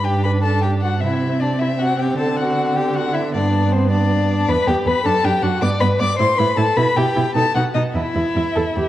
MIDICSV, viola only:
0, 0, Header, 1, 2, 480
1, 0, Start_track
1, 0, Key_signature, 1, "major"
1, 0, Tempo, 384123
1, 1278, Time_signature, 6, 3, 24, 8
1, 5603, Key_signature, 1, "minor"
1, 8458, Tempo, 400000
1, 10998, End_track
2, 0, Start_track
2, 0, Title_t, "Viola"
2, 0, Program_c, 0, 41
2, 0, Note_on_c, 0, 62, 41
2, 1225, Note_off_c, 0, 62, 0
2, 1269, Note_on_c, 0, 60, 43
2, 4110, Note_off_c, 0, 60, 0
2, 4165, Note_on_c, 0, 59, 46
2, 5553, Note_off_c, 0, 59, 0
2, 5603, Note_on_c, 0, 59, 45
2, 5698, Note_off_c, 0, 59, 0
2, 5840, Note_on_c, 0, 59, 45
2, 5935, Note_off_c, 0, 59, 0
2, 6081, Note_on_c, 0, 59, 46
2, 6175, Note_off_c, 0, 59, 0
2, 6310, Note_on_c, 0, 62, 51
2, 6405, Note_off_c, 0, 62, 0
2, 6546, Note_on_c, 0, 62, 47
2, 6641, Note_off_c, 0, 62, 0
2, 6784, Note_on_c, 0, 62, 47
2, 6879, Note_off_c, 0, 62, 0
2, 7022, Note_on_c, 0, 59, 51
2, 7117, Note_off_c, 0, 59, 0
2, 7258, Note_on_c, 0, 59, 51
2, 7354, Note_off_c, 0, 59, 0
2, 7498, Note_on_c, 0, 59, 50
2, 7594, Note_off_c, 0, 59, 0
2, 7737, Note_on_c, 0, 64, 50
2, 7832, Note_off_c, 0, 64, 0
2, 7981, Note_on_c, 0, 64, 49
2, 8076, Note_off_c, 0, 64, 0
2, 8216, Note_on_c, 0, 64, 47
2, 8312, Note_off_c, 0, 64, 0
2, 8457, Note_on_c, 0, 64, 54
2, 8550, Note_off_c, 0, 64, 0
2, 8690, Note_on_c, 0, 64, 48
2, 8784, Note_off_c, 0, 64, 0
2, 8923, Note_on_c, 0, 64, 46
2, 9018, Note_off_c, 0, 64, 0
2, 9158, Note_on_c, 0, 63, 48
2, 9254, Note_off_c, 0, 63, 0
2, 9403, Note_on_c, 0, 63, 41
2, 9498, Note_off_c, 0, 63, 0
2, 9635, Note_on_c, 0, 63, 40
2, 9731, Note_off_c, 0, 63, 0
2, 9875, Note_on_c, 0, 64, 44
2, 9971, Note_off_c, 0, 64, 0
2, 10117, Note_on_c, 0, 64, 42
2, 10213, Note_off_c, 0, 64, 0
2, 10362, Note_on_c, 0, 64, 44
2, 10458, Note_off_c, 0, 64, 0
2, 10604, Note_on_c, 0, 69, 64
2, 10700, Note_off_c, 0, 69, 0
2, 10853, Note_on_c, 0, 67, 43
2, 10998, Note_off_c, 0, 67, 0
2, 10998, End_track
0, 0, End_of_file